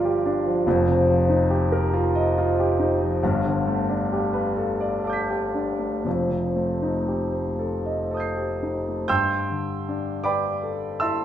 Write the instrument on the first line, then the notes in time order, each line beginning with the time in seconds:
grand piano
Already playing: G1 G2 D3 F3 D4 F4 G4 A#4 D5
0.05 G4
0.26 D4
0.46 F3
0.67 F1 F2
0.88 C3
1.10 F3
1.30 D#4
1.50 G4
1.72 A#4
1.94 F4
2.15 D#5
2.38 F4
2.60 G4
2.80 D#4
3.02 F3
3.23 G1 G2
3.45 D3
3.67 A3
3.89 D4
4.12 G4
4.33 B4
4.57 A4
4.81 D5
5.04 A4 A5 D6
5.10 G6 B6
5.30 G4
5.54 D4
5.79 A3
6.05 F1 F2
6.30 C3
6.56 A3
6.82 D#4
7.08 G4
7.33 C5
7.59 A4
7.86 D#5
8.11 A4 A5 D#6
8.17 G6 C7
8.36 G4
8.63 D#4
8.88 A3
9.08 G2 G5 C6 E6 G6
9.50 D3
9.88 D4
10.24 B4 D5 G5 B5 D6
10.63 A4
11.00 E4 E5 A5 C6 E6